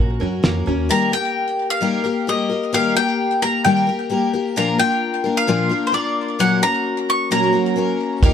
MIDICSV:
0, 0, Header, 1, 7, 480
1, 0, Start_track
1, 0, Key_signature, -3, "major"
1, 0, Tempo, 458015
1, 945, Time_signature, 4, 2, 24, 8
1, 8735, End_track
2, 0, Start_track
2, 0, Title_t, "Mandolin"
2, 0, Program_c, 0, 25
2, 0, Note_on_c, 0, 82, 94
2, 663, Note_off_c, 0, 82, 0
2, 948, Note_on_c, 0, 82, 109
2, 1182, Note_off_c, 0, 82, 0
2, 1186, Note_on_c, 0, 79, 96
2, 1744, Note_off_c, 0, 79, 0
2, 1785, Note_on_c, 0, 77, 98
2, 2400, Note_on_c, 0, 75, 90
2, 2403, Note_off_c, 0, 77, 0
2, 2875, Note_on_c, 0, 77, 98
2, 2887, Note_off_c, 0, 75, 0
2, 3103, Note_off_c, 0, 77, 0
2, 3107, Note_on_c, 0, 79, 97
2, 3583, Note_off_c, 0, 79, 0
2, 3587, Note_on_c, 0, 82, 98
2, 3816, Note_off_c, 0, 82, 0
2, 3820, Note_on_c, 0, 79, 93
2, 4500, Note_off_c, 0, 79, 0
2, 4793, Note_on_c, 0, 82, 92
2, 5020, Note_off_c, 0, 82, 0
2, 5025, Note_on_c, 0, 79, 102
2, 5626, Note_off_c, 0, 79, 0
2, 5630, Note_on_c, 0, 77, 92
2, 6150, Note_on_c, 0, 72, 64
2, 6169, Note_off_c, 0, 77, 0
2, 6221, Note_off_c, 0, 72, 0
2, 6226, Note_on_c, 0, 74, 86
2, 6708, Note_on_c, 0, 78, 102
2, 6718, Note_off_c, 0, 74, 0
2, 6929, Note_off_c, 0, 78, 0
2, 6946, Note_on_c, 0, 82, 105
2, 7433, Note_off_c, 0, 82, 0
2, 7437, Note_on_c, 0, 85, 103
2, 7664, Note_off_c, 0, 85, 0
2, 7669, Note_on_c, 0, 82, 104
2, 8343, Note_off_c, 0, 82, 0
2, 8631, Note_on_c, 0, 77, 85
2, 8735, Note_off_c, 0, 77, 0
2, 8735, End_track
3, 0, Start_track
3, 0, Title_t, "Twelve-string acoustic guitar"
3, 0, Program_c, 1, 25
3, 0, Note_on_c, 1, 58, 55
3, 0, Note_on_c, 1, 61, 59
3, 0, Note_on_c, 1, 66, 56
3, 0, Note_on_c, 1, 70, 63
3, 196, Note_off_c, 1, 70, 0
3, 208, Note_on_c, 1, 70, 54
3, 210, Note_off_c, 1, 66, 0
3, 214, Note_off_c, 1, 58, 0
3, 220, Note_off_c, 1, 61, 0
3, 223, Note_on_c, 1, 66, 49
3, 239, Note_on_c, 1, 61, 44
3, 447, Note_on_c, 1, 58, 58
3, 449, Note_off_c, 1, 61, 0
3, 454, Note_off_c, 1, 66, 0
3, 457, Note_off_c, 1, 70, 0
3, 461, Note_on_c, 1, 61, 63
3, 467, Note_on_c, 1, 66, 58
3, 472, Note_on_c, 1, 70, 63
3, 678, Note_off_c, 1, 70, 0
3, 691, Note_on_c, 1, 70, 54
3, 696, Note_off_c, 1, 58, 0
3, 696, Note_off_c, 1, 66, 0
3, 703, Note_off_c, 1, 61, 0
3, 709, Note_on_c, 1, 66, 47
3, 721, Note_on_c, 1, 61, 47
3, 934, Note_on_c, 1, 51, 78
3, 938, Note_off_c, 1, 70, 0
3, 938, Note_on_c, 1, 55, 83
3, 943, Note_off_c, 1, 61, 0
3, 947, Note_off_c, 1, 66, 0
3, 947, Note_on_c, 1, 58, 80
3, 953, Note_on_c, 1, 67, 81
3, 958, Note_on_c, 1, 70, 86
3, 1161, Note_off_c, 1, 70, 0
3, 1174, Note_on_c, 1, 70, 54
3, 1180, Note_off_c, 1, 51, 0
3, 1181, Note_off_c, 1, 67, 0
3, 1182, Note_off_c, 1, 55, 0
3, 1186, Note_off_c, 1, 58, 0
3, 1193, Note_on_c, 1, 67, 54
3, 1206, Note_on_c, 1, 58, 41
3, 1893, Note_on_c, 1, 51, 76
3, 1899, Note_off_c, 1, 67, 0
3, 1900, Note_off_c, 1, 58, 0
3, 1903, Note_on_c, 1, 55, 80
3, 1904, Note_on_c, 1, 58, 74
3, 1911, Note_off_c, 1, 70, 0
3, 1912, Note_on_c, 1, 67, 81
3, 1915, Note_on_c, 1, 70, 86
3, 2123, Note_off_c, 1, 70, 0
3, 2135, Note_on_c, 1, 70, 60
3, 2139, Note_off_c, 1, 51, 0
3, 2139, Note_off_c, 1, 67, 0
3, 2144, Note_off_c, 1, 55, 0
3, 2145, Note_off_c, 1, 58, 0
3, 2152, Note_on_c, 1, 67, 53
3, 2166, Note_on_c, 1, 58, 48
3, 2377, Note_off_c, 1, 58, 0
3, 2380, Note_off_c, 1, 70, 0
3, 2380, Note_on_c, 1, 55, 64
3, 2383, Note_off_c, 1, 67, 0
3, 2390, Note_on_c, 1, 58, 62
3, 2396, Note_on_c, 1, 67, 68
3, 2409, Note_on_c, 1, 70, 68
3, 2604, Note_off_c, 1, 70, 0
3, 2616, Note_on_c, 1, 70, 51
3, 2620, Note_off_c, 1, 67, 0
3, 2623, Note_off_c, 1, 55, 0
3, 2628, Note_off_c, 1, 58, 0
3, 2633, Note_on_c, 1, 67, 45
3, 2641, Note_on_c, 1, 58, 44
3, 2854, Note_off_c, 1, 58, 0
3, 2857, Note_on_c, 1, 51, 81
3, 2861, Note_off_c, 1, 70, 0
3, 2862, Note_off_c, 1, 67, 0
3, 2865, Note_on_c, 1, 55, 81
3, 2867, Note_on_c, 1, 58, 80
3, 2875, Note_on_c, 1, 67, 84
3, 2878, Note_on_c, 1, 70, 95
3, 3085, Note_off_c, 1, 70, 0
3, 3098, Note_on_c, 1, 70, 54
3, 3099, Note_off_c, 1, 67, 0
3, 3101, Note_off_c, 1, 51, 0
3, 3105, Note_off_c, 1, 55, 0
3, 3106, Note_off_c, 1, 58, 0
3, 3112, Note_on_c, 1, 67, 54
3, 3123, Note_on_c, 1, 58, 47
3, 3580, Note_off_c, 1, 70, 0
3, 3584, Note_on_c, 1, 70, 53
3, 3588, Note_off_c, 1, 67, 0
3, 3599, Note_on_c, 1, 67, 47
3, 3603, Note_off_c, 1, 58, 0
3, 3608, Note_on_c, 1, 58, 41
3, 3822, Note_off_c, 1, 58, 0
3, 3822, Note_on_c, 1, 51, 82
3, 3823, Note_off_c, 1, 67, 0
3, 3824, Note_off_c, 1, 70, 0
3, 3831, Note_on_c, 1, 55, 88
3, 3834, Note_on_c, 1, 58, 75
3, 3835, Note_on_c, 1, 67, 83
3, 3845, Note_on_c, 1, 70, 81
3, 4040, Note_off_c, 1, 70, 0
3, 4053, Note_on_c, 1, 70, 63
3, 4061, Note_off_c, 1, 67, 0
3, 4063, Note_off_c, 1, 51, 0
3, 4068, Note_off_c, 1, 55, 0
3, 4069, Note_off_c, 1, 58, 0
3, 4073, Note_on_c, 1, 67, 59
3, 4080, Note_on_c, 1, 58, 48
3, 4287, Note_off_c, 1, 58, 0
3, 4292, Note_on_c, 1, 55, 66
3, 4297, Note_off_c, 1, 67, 0
3, 4298, Note_off_c, 1, 70, 0
3, 4299, Note_on_c, 1, 58, 73
3, 4310, Note_on_c, 1, 67, 66
3, 4319, Note_on_c, 1, 70, 74
3, 4532, Note_off_c, 1, 70, 0
3, 4538, Note_off_c, 1, 55, 0
3, 4542, Note_off_c, 1, 58, 0
3, 4543, Note_off_c, 1, 67, 0
3, 4545, Note_on_c, 1, 70, 60
3, 4555, Note_on_c, 1, 67, 54
3, 4569, Note_on_c, 1, 58, 52
3, 4777, Note_off_c, 1, 58, 0
3, 4779, Note_on_c, 1, 46, 80
3, 4784, Note_off_c, 1, 70, 0
3, 4784, Note_on_c, 1, 53, 79
3, 4789, Note_off_c, 1, 67, 0
3, 4789, Note_on_c, 1, 58, 90
3, 4794, Note_on_c, 1, 62, 86
3, 4796, Note_on_c, 1, 65, 91
3, 4801, Note_on_c, 1, 70, 89
3, 5001, Note_off_c, 1, 70, 0
3, 5013, Note_on_c, 1, 70, 55
3, 5016, Note_off_c, 1, 65, 0
3, 5021, Note_off_c, 1, 46, 0
3, 5024, Note_off_c, 1, 53, 0
3, 5024, Note_off_c, 1, 62, 0
3, 5026, Note_off_c, 1, 58, 0
3, 5029, Note_on_c, 1, 65, 53
3, 5036, Note_on_c, 1, 62, 49
3, 5045, Note_on_c, 1, 58, 49
3, 5485, Note_off_c, 1, 70, 0
3, 5489, Note_on_c, 1, 70, 52
3, 5492, Note_off_c, 1, 65, 0
3, 5498, Note_off_c, 1, 62, 0
3, 5504, Note_on_c, 1, 65, 47
3, 5510, Note_on_c, 1, 62, 48
3, 5517, Note_off_c, 1, 58, 0
3, 5521, Note_on_c, 1, 58, 44
3, 5732, Note_off_c, 1, 58, 0
3, 5733, Note_on_c, 1, 46, 80
3, 5736, Note_off_c, 1, 62, 0
3, 5736, Note_off_c, 1, 70, 0
3, 5738, Note_off_c, 1, 65, 0
3, 5739, Note_on_c, 1, 53, 86
3, 5744, Note_on_c, 1, 58, 78
3, 5748, Note_on_c, 1, 62, 82
3, 5751, Note_on_c, 1, 65, 85
3, 5755, Note_on_c, 1, 70, 93
3, 5954, Note_off_c, 1, 70, 0
3, 5966, Note_off_c, 1, 65, 0
3, 5967, Note_on_c, 1, 70, 59
3, 5973, Note_off_c, 1, 62, 0
3, 5978, Note_off_c, 1, 46, 0
3, 5979, Note_on_c, 1, 65, 53
3, 5980, Note_off_c, 1, 58, 0
3, 5981, Note_off_c, 1, 53, 0
3, 5985, Note_on_c, 1, 62, 50
3, 5993, Note_on_c, 1, 58, 45
3, 6192, Note_off_c, 1, 58, 0
3, 6205, Note_off_c, 1, 62, 0
3, 6205, Note_on_c, 1, 58, 64
3, 6209, Note_off_c, 1, 65, 0
3, 6215, Note_off_c, 1, 70, 0
3, 6218, Note_on_c, 1, 62, 63
3, 6222, Note_on_c, 1, 65, 69
3, 6235, Note_on_c, 1, 70, 66
3, 6695, Note_on_c, 1, 46, 74
3, 6699, Note_off_c, 1, 58, 0
3, 6699, Note_on_c, 1, 54, 85
3, 6700, Note_off_c, 1, 62, 0
3, 6702, Note_off_c, 1, 65, 0
3, 6703, Note_on_c, 1, 58, 80
3, 6704, Note_on_c, 1, 61, 79
3, 6707, Note_off_c, 1, 70, 0
3, 6711, Note_on_c, 1, 70, 79
3, 6712, Note_on_c, 1, 66, 90
3, 6925, Note_off_c, 1, 70, 0
3, 6935, Note_off_c, 1, 66, 0
3, 6937, Note_on_c, 1, 70, 51
3, 6939, Note_off_c, 1, 46, 0
3, 6941, Note_off_c, 1, 54, 0
3, 6943, Note_off_c, 1, 58, 0
3, 6943, Note_off_c, 1, 61, 0
3, 6948, Note_on_c, 1, 66, 56
3, 6957, Note_on_c, 1, 61, 52
3, 6961, Note_on_c, 1, 58, 46
3, 7657, Note_off_c, 1, 61, 0
3, 7658, Note_on_c, 1, 46, 74
3, 7661, Note_off_c, 1, 58, 0
3, 7662, Note_on_c, 1, 54, 73
3, 7665, Note_off_c, 1, 66, 0
3, 7665, Note_on_c, 1, 58, 80
3, 7670, Note_on_c, 1, 61, 81
3, 7671, Note_off_c, 1, 70, 0
3, 7676, Note_on_c, 1, 66, 88
3, 7676, Note_on_c, 1, 70, 80
3, 7876, Note_off_c, 1, 70, 0
3, 7887, Note_off_c, 1, 66, 0
3, 7889, Note_on_c, 1, 70, 56
3, 7892, Note_off_c, 1, 61, 0
3, 7900, Note_off_c, 1, 46, 0
3, 7900, Note_off_c, 1, 58, 0
3, 7900, Note_on_c, 1, 66, 53
3, 7902, Note_off_c, 1, 54, 0
3, 7904, Note_on_c, 1, 61, 50
3, 7913, Note_on_c, 1, 58, 54
3, 8116, Note_off_c, 1, 58, 0
3, 8125, Note_off_c, 1, 61, 0
3, 8129, Note_on_c, 1, 58, 61
3, 8133, Note_off_c, 1, 66, 0
3, 8135, Note_off_c, 1, 70, 0
3, 8138, Note_on_c, 1, 61, 63
3, 8145, Note_on_c, 1, 66, 68
3, 8155, Note_on_c, 1, 70, 72
3, 8620, Note_off_c, 1, 61, 0
3, 8620, Note_on_c, 1, 51, 81
3, 8621, Note_off_c, 1, 58, 0
3, 8623, Note_off_c, 1, 66, 0
3, 8626, Note_on_c, 1, 58, 84
3, 8631, Note_on_c, 1, 63, 82
3, 8633, Note_off_c, 1, 70, 0
3, 8636, Note_on_c, 1, 67, 93
3, 8638, Note_on_c, 1, 70, 85
3, 8735, Note_off_c, 1, 51, 0
3, 8735, Note_off_c, 1, 58, 0
3, 8735, Note_off_c, 1, 63, 0
3, 8735, Note_off_c, 1, 67, 0
3, 8735, Note_off_c, 1, 70, 0
3, 8735, End_track
4, 0, Start_track
4, 0, Title_t, "Five-string banjo"
4, 0, Program_c, 2, 105
4, 0, Note_on_c, 2, 61, 61
4, 0, Note_on_c, 2, 66, 80
4, 0, Note_on_c, 2, 70, 70
4, 207, Note_off_c, 2, 61, 0
4, 219, Note_on_c, 2, 61, 68
4, 461, Note_on_c, 2, 58, 72
4, 691, Note_off_c, 2, 61, 0
4, 701, Note_off_c, 2, 70, 0
4, 704, Note_on_c, 2, 61, 70
4, 943, Note_off_c, 2, 66, 0
4, 944, Note_off_c, 2, 58, 0
4, 945, Note_off_c, 2, 61, 0
4, 8622, Note_on_c, 2, 58, 91
4, 8735, Note_off_c, 2, 58, 0
4, 8735, End_track
5, 0, Start_track
5, 0, Title_t, "French horn"
5, 0, Program_c, 3, 60
5, 7668, Note_on_c, 3, 54, 86
5, 8343, Note_off_c, 3, 54, 0
5, 8618, Note_on_c, 3, 46, 83
5, 8735, Note_off_c, 3, 46, 0
5, 8735, End_track
6, 0, Start_track
6, 0, Title_t, "Upright bass"
6, 0, Program_c, 4, 32
6, 0, Note_on_c, 4, 34, 79
6, 187, Note_off_c, 4, 34, 0
6, 229, Note_on_c, 4, 42, 75
6, 443, Note_off_c, 4, 42, 0
6, 466, Note_on_c, 4, 41, 78
6, 681, Note_off_c, 4, 41, 0
6, 706, Note_on_c, 4, 39, 73
6, 922, Note_off_c, 4, 39, 0
6, 8621, Note_on_c, 4, 39, 118
6, 8735, Note_off_c, 4, 39, 0
6, 8735, End_track
7, 0, Start_track
7, 0, Title_t, "Drums"
7, 458, Note_on_c, 9, 38, 98
7, 563, Note_off_c, 9, 38, 0
7, 8621, Note_on_c, 9, 36, 114
7, 8626, Note_on_c, 9, 54, 26
7, 8726, Note_off_c, 9, 36, 0
7, 8730, Note_off_c, 9, 54, 0
7, 8735, End_track
0, 0, End_of_file